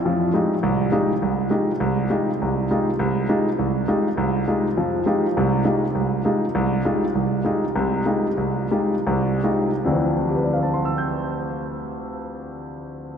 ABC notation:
X:1
M:4/4
L:1/8
Q:"Swing" 1/4=203
K:Flyd
V:1 name="Grand piano"
[F,,F,]2 [_A,_EFG] z C,,2 [A,EFG] z | C,,2 [_A,_EFG] z C,,2 [A,EFG] z | [C,,C,]2 [_A,_EFG] z C,,2 [A,EFG] z | C,,2 [_A,_EFG] z C,,2 [A,EFG] z |
[F,,F,]2 [_A,_EFG] z [C,,C,]2 [A,EFG] z | C,,2 [_A,_EFG] z C,,2 [A,EFG] z | C,,2 [_A,_EFG] z [C,,C,]2 [A,EFG] z | C,,2 [_A,_EFG] z [C,,C,]2 [A,EFG] z |
z2 [GBdfac'e'g']6- | [GBdfac'e'g']8 |]
V:2 name="Grand piano" clef=bass
z8 | z8 | z8 | z8 |
z8 | z8 | z8 | z8 |
[D,,D,E,F,C]8- | [D,,D,E,F,C]8 |]